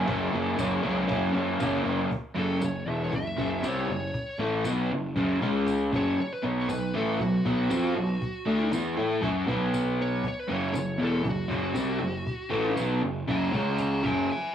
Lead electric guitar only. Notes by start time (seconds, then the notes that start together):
2.39 A4
2.64 C#5
2.89 E5
3.04 C#5
3.16 E5
3.68 C#5
3.92 C#5
5.96 C#5
6.21 C#5
6.34 B4
6.46 C#5
6.70 B4
6.96 A4
7.21 F#4
10.02 C#5
10.28 C#5
10.39 B4
10.53 C#5
10.79 C#5
11.04 A4
11.29 F#4
13.30 F#5 A#5
13.55 F#5 A#5
13.81 F#5 A#5
14.06 E5 G#5
14.32 E5 G#5